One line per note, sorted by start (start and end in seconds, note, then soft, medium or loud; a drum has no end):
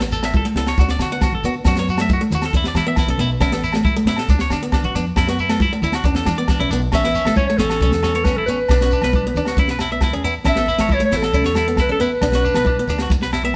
0.00 0.40 A1 medium
0.00 0.13 B3 medium
0.00 muted clean electric guitar stroke medium
0.00 snare medium
0.12 0.22 A4 medium
0.12 shekere medium
0.23 0.34 E5 medium
0.23 muted steel-string acoustic guitar stroke medium
0.23 snare medium
0.23 low agogo medium
0.34 0.45 A4 medium
0.34 kick medium
0.34 high conga medium
0.34 shekere medium
0.45 0.51 A3 medium
0.55 0.72 C#2 medium
0.55 0.69 E4 medium
0.55 0.66 A4 medium
0.55 snare medium
0.67 0.77 C#5 medium
0.67 snare medium
0.67 low agogo medium
0.78 0.94 D2 medium
0.78 0.92 C#4 medium
0.78 0.88 F#4 medium
0.78 kick medium
0.78 muted conga soft
0.78 high conga medium
0.78 shekere medium
0.89 0.99 D5 medium
0.89 snare medium
0.99 1.24 D3 loud
0.99 1.11 F#4 medium
0.99 snare medium
0.99 muted conga soft
0.99 low agogo medium
0.99 shekere medium
1.12 1.24 B3 medium
1.12 1.21 F#5 medium
1.21 1.32 F#4 medium
1.21 kick medium
1.21 snare medium
1.21 high conga medium
1.21 low agogo medium
1.21 shekere medium
1.33 1.41 A1 medium
1.33 1.43 A4 medium
1.43 1.60 D3 medium
1.43 1.57 B3 medium
1.43 1.54 F#4 medium
1.43 shekere medium
1.65 2.16 F#2 medium
1.65 1.73 C#4 medium
1.65 1.76 F#4 medium
1.65 kick medium
1.65 snare medium
1.65 muted conga soft
1.65 low agogo medium
1.65 shekere medium
1.76 1.91 B3 medium
1.76 1.88 C#5 medium
1.76 snare medium
1.89 1.99 F#4 medium
1.89 shekere medium
1.98 2.12 A3 medium
1.98 2.10 E5 medium
1.98 snare medium
1.98 low agogo medium
2.09 kick medium
2.09 high conga medium
2.09 shekere medium
2.13 2.21 F#4 medium
2.21 2.27 A3 medium
2.30 2.47 D#2 medium
2.30 2.44 E4 medium
2.30 muted conga soft
2.30 low conga medium
2.30 shekere medium
2.35 2.43 F#4 medium
2.42 2.54 A4 medium
2.42 snare medium
2.42 low agogo medium
2.53 2.70 E2 medium
2.53 2.66 C#4 medium
2.53 2.65 E4 medium
2.53 kick medium
2.53 muted conga soft
2.53 shekere medium
2.64 2.76 D5 medium
2.64 snare medium
2.74 3.00 E3 loud
2.74 2.86 E4 medium
2.74 snare medium
2.74 muted conga soft
2.74 high conga medium
2.74 low agogo medium
2.74 shekere medium
2.87 2.99 B3 medium
2.87 2.97 E5 medium
2.96 3.08 E4 medium
2.96 kick medium
2.96 snare medium
2.96 high conga medium
2.96 low agogo medium
2.96 shekere medium
3.07 3.15 B1 medium
3.07 3.14 C#4 medium
3.07 3.19 A4 medium
3.18 3.35 B1 medium
3.18 3.31 B3 medium
3.18 3.30 E4 medium
3.18 shekere medium
3.40 3.91 A1 medium
3.40 3.47 C#4 medium
3.40 3.51 E4 medium
3.40 kick medium
3.40 snare medium
3.40 low agogo medium
3.40 shekere medium
3.52 3.65 B3 medium
3.52 3.62 A4 medium
3.52 snare medium
3.64 3.73 E4 medium
3.64 shekere medium
3.73 3.87 A3 medium
3.73 snare medium
3.73 low agogo medium
3.85 3.94 E4 medium
3.85 kick medium
3.85 high conga medium
3.85 shekere medium
3.96 4.02 A3 medium
4.05 4.22 A2 medium
4.05 4.17 E4 medium
4.05 muted steel-string acoustic guitar stroke medium
4.05 snare medium
4.05 muted conga soft
4.05 shekere medium
4.16 4.28 A4 medium
4.16 snare medium
4.16 low agogo medium
4.29 4.45 D2 medium
4.29 4.42 C#4 medium
4.29 4.39 D4 medium
4.29 kick medium
4.29 muted conga soft
4.29 high conga medium
4.29 shekere medium
4.39 4.50 C#5 medium
4.39 snare medium
4.50 4.75 D3 loud
4.50 4.61 D4 medium
4.50 snare medium
4.50 muted conga soft
4.50 low agogo medium
4.50 shekere medium
4.63 4.75 B3 medium
4.72 4.83 D4 medium
4.72 kick medium
4.72 snare medium
4.72 high conga medium
4.72 low agogo medium
4.72 shekere medium
4.83 4.92 A1 medium
4.83 4.90 C#4 medium
4.83 4.94 F#4 medium
4.95 5.11 F2 medium
4.95 5.08 B3 medium
4.95 5.05 D4 medium
4.95 shekere medium
5.16 5.67 F#2 medium
5.16 5.24 C#4 medium
5.16 5.27 E4 medium
5.16 kick medium
5.16 snare medium
5.16 muted conga soft
5.16 low agogo medium
5.16 shekere medium
5.27 5.41 B3 medium
5.27 5.38 F#4 medium
5.27 snare medium
5.39 5.49 E4 medium
5.39 shekere medium
5.49 5.62 A3 medium
5.49 5.60 A4 medium
5.49 snare medium
5.49 low agogo medium
5.49 shekere soft
5.60 5.71 E4 medium
5.60 kick medium
5.60 high conga medium
5.60 shekere medium
5.73 5.78 A3 medium
5.82 5.99 D#2 medium
5.82 5.96 E4 medium
5.82 5.93 E4 medium
5.82 muted conga soft
5.82 low conga medium
5.82 shekere medium
5.92 6.04 F#4 medium
5.92 snare medium
5.92 low agogo medium
6.04 6.21 E2 medium
6.04 6.18 C#4 medium
6.04 6.14 D4 medium
6.04 kick medium
6.04 muted conga soft
6.04 shekere medium
6.15 6.25 A4 medium
6.15 snare medium
6.25 6.51 E3 medium
6.25 6.36 D4 medium
6.25 snare medium
6.25 muted conga soft
6.25 high conga medium
6.25 low agogo medium
6.25 shekere medium
6.38 6.50 B3 medium
6.38 6.47 D5 medium
6.48 6.59 D4 medium
6.48 kick medium
6.48 snare medium
6.48 high conga medium
6.48 low agogo medium
6.48 shekere medium
6.59 6.67 B1 medium
6.59 6.66 C#4 medium
6.59 6.69 E4 medium
6.59 snare soft
6.69 6.86 B1 medium
6.69 6.84 B3 medium
6.69 6.80 D4 medium
6.69 shekere medium
6.92 7.18 A1 medium
6.92 7.03 C#4 medium
6.92 7.00 C#4 medium
6.92 7.35 E5 loud
6.92 kick medium
6.92 snare medium
6.92 muted conga soft
6.92 low agogo medium
6.92 shekere medium
7.04 7.17 B3 medium
7.04 7.14 E4 medium
7.04 snare medium
7.14 7.25 C#4 medium
7.14 muted conga soft
7.14 shekere medium
7.25 7.50 A1 medium
7.25 7.39 A3 medium
7.25 7.36 A4 medium
7.25 snare medium
7.25 low agogo medium
7.25 shekere soft
7.36 7.47 C#4 medium
7.36 7.47 C#5 medium
7.36 kick medium
7.36 high conga medium
7.36 shekere medium
7.47 7.55 A3 medium
7.47 7.59 C#5 medium
7.58 7.91 A1 medium
7.58 7.69 C#4 medium
7.58 7.72 E4 medium
7.58 8.26 A4 medium
7.58 snare medium
7.58 shekere medium
7.70 7.80 C#4 medium
7.70 snare medium
7.70 low agogo medium
7.70 shekere soft
7.81 7.91 C#4 medium
7.81 7.94 C#4 medium
7.81 kick medium
7.81 muted conga soft
7.81 shekere medium
7.91 8.36 E2 medium
7.91 snare medium
8.03 8.13 C#4 medium
8.03 snare medium
8.03 high conga medium
8.03 low agogo medium
8.03 shekere medium
8.15 8.27 B3 medium
8.15 8.24 C#5 medium
8.15 shekere soft
8.24 8.35 C#4 medium
8.24 8.38 B4 medium
8.24 kick medium
8.24 snare medium
8.24 high conga medium
8.24 low agogo medium
8.24 shekere medium
8.36 8.61 A1 medium
8.36 8.47 E4 medium
8.36 8.46 A4 medium
8.46 8.60 B3 medium
8.46 8.58 C#4 medium
8.46 9.75 B4 medium
8.46 muted conga soft
8.46 shekere medium
8.69 8.94 B1 medium
8.69 8.80 D4 medium
8.69 8.77 D4 medium
8.69 kick medium
8.69 snare medium
8.69 muted conga soft
8.69 low agogo medium
8.69 shekere medium
8.81 8.94 C#4 medium
8.81 8.91 F#4 medium
8.81 snare medium
8.91 9.02 D4 medium
8.91 muted conga soft
8.91 shekere medium
9.01 9.26 B1 medium
9.01 9.16 B3 medium
9.01 9.12 B4 medium
9.01 snare medium
9.01 low agogo medium
9.01 shekere soft
9.13 9.24 D4 medium
9.13 kick medium
9.13 high conga medium
9.13 shekere soft
9.27 9.32 B3 medium
9.34 9.51 D2 medium
9.34 9.49 D4 medium
9.34 9.46 D4 medium
9.34 low conga medium
9.34 shekere medium
9.45 9.57 F#4 medium
9.45 snare medium
9.45 low agogo medium
9.45 shekere soft
9.57 9.68 E2 medium
9.57 9.70 C#4 medium
9.57 9.68 E4 medium
9.57 kick medium
9.57 muted conga soft
9.57 high conga medium
9.57 shekere medium
9.68 10.12 B1 medium
9.68 9.79 B4 medium
9.68 snare medium
9.79 9.90 E4 medium
9.79 snare medium
9.79 low agogo medium
9.79 shekere medium
9.92 10.04 B3 medium
9.92 10.01 E5 medium
10.01 10.12 E4 medium
10.01 kick medium
10.01 snare medium
10.01 high conga medium
10.01 low agogo medium
10.01 shekere medium
10.12 10.37 E2 medium
10.12 10.19 C#4 medium
10.12 10.23 G#4 medium
10.22 10.37 B3 medium
10.22 10.34 E4 medium
10.22 muted conga soft
10.22 shekere medium
10.44 10.70 A1 medium
10.44 10.51 C#4 medium
10.44 10.56 E4 medium
10.44 kick medium
10.44 snare medium
10.44 muted conga soft
10.44 low agogo medium
10.44 shekere medium
10.49 10.95 E5 loud
10.56 10.69 B3 medium
10.56 10.66 A4 medium
10.56 snare medium
10.66 10.78 E4 medium
10.66 muted conga soft
10.66 shekere medium
10.78 11.04 A1 medium
10.78 10.91 A3 medium
10.78 10.89 C#5 medium
10.78 snare medium
10.78 low agogo medium
10.89 11.00 E4 medium
10.89 kick medium
10.89 high conga medium
10.89 shekere medium
10.94 11.03 C#5 medium
11.00 11.06 A3 medium
11.05 11.18 C#5 medium
11.12 11.45 A1 medium
11.12 11.24 E4 medium
11.12 11.22 E4 medium
11.12 snare medium
11.12 shekere medium
11.17 11.80 A4 medium
11.22 11.33 A4 medium
11.22 snare medium
11.22 low agogo medium
11.33 11.46 C#4 medium
11.33 11.44 E4 medium
11.33 kick medium
11.33 muted conga soft
11.33 shekere medium
11.44 11.89 E2 medium
11.44 11.55 C#5 medium
11.44 snare medium
11.55 11.66 E4 medium
11.55 snare medium
11.55 high conga medium
11.55 low agogo medium
11.55 shekere medium
11.67 11.80 B3 medium
11.67 shekere soft
11.76 11.88 E4 medium
11.76 kick medium
11.76 snare medium
11.76 high conga medium
11.76 low agogo medium
11.76 shekere medium
11.81 11.90 B4 medium
11.89 12.14 A1 medium
11.89 11.95 C#4 medium
11.89 12.00 A4 medium
11.89 11.96 A4 medium
11.98 12.12 B3 medium
11.98 12.10 E4 medium
11.98 13.28 B4 medium
11.98 muted conga soft
11.98 shekere medium
12.21 12.47 B1 medium
12.21 12.28 D4 medium
12.21 muted clean electric guitar stroke medium
12.21 kick medium
12.21 snare medium
12.21 muted conga soft
12.21 low agogo medium
12.21 shekere medium
12.32 12.47 C#4 medium
12.32 12.44 F#4 medium
12.32 snare medium
12.43 12.54 D4 medium
12.43 muted conga soft
12.43 shekere medium
12.54 12.80 B1 medium
12.54 12.68 B3 medium
12.54 12.65 B4 medium
12.54 snare medium
12.54 low agogo medium
12.65 12.76 D4 medium
12.65 kick medium
12.65 high conga medium
12.65 shekere medium
12.79 12.85 B3 medium
12.88 13.05 D2 medium
12.88 12.99 D4 medium
12.88 13.02 D4 medium
12.88 low conga medium
12.88 shekere medium
12.98 13.10 F#4 medium
12.98 snare medium
12.98 low agogo medium
13.09 13.21 E2 medium
13.09 muted steel-string acoustic guitar stroke medium
13.09 muted clean electric guitar stroke medium
13.09 kick medium
13.09 muted conga soft
13.09 high conga medium
13.09 shekere medium
13.21 13.56 B1 medium
13.21 13.31 B4 medium
13.21 snare medium
13.33 13.42 E4 medium
13.33 snare medium
13.33 low agogo medium
13.33 shekere medium
13.43 13.56 B3 medium
13.43 13.54 E5 medium
13.43 high conga soft
13.43 shekere soft